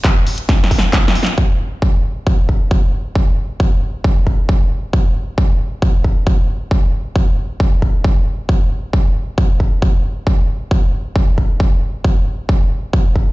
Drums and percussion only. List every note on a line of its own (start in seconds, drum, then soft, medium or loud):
0.04 kick loud
0.04 clap loud
0.04 closed hi-hat medium
0.27 open hi-hat medium
0.38 closed hi-hat medium
0.49 kick loud
0.49 snare medium
0.49 closed hi-hat medium
0.64 snare medium
0.71 kick medium
0.71 open hi-hat loud
0.78 snare medium
0.78 closed hi-hat medium
0.93 kick loud
0.93 snare medium
0.93 clap loud
0.93 closed hi-hat medium
1.08 snare medium
1.15 open hi-hat medium
1.23 snare loud
1.23 closed hi-hat medium
1.38 kick loud
1.82 kick loud
2.27 kick loud
2.49 kick medium
2.71 kick loud
3.15 kick loud
3.60 kick loud
4.04 kick loud
4.27 kick medium
4.49 kick loud
4.93 kick loud
5.38 kick loud
5.82 kick loud
6.04 kick medium
6.27 kick loud
6.71 kick loud
7.16 kick loud
7.60 kick loud
7.82 kick medium
8.04 kick loud
8.49 kick loud
8.93 kick loud
9.38 kick loud
9.60 kick medium
9.82 kick loud
10.27 kick loud
10.71 kick loud
11.16 kick loud
11.38 kick medium
11.60 kick loud
12.04 kick loud
12.49 kick loud
12.93 kick loud
13.16 kick soft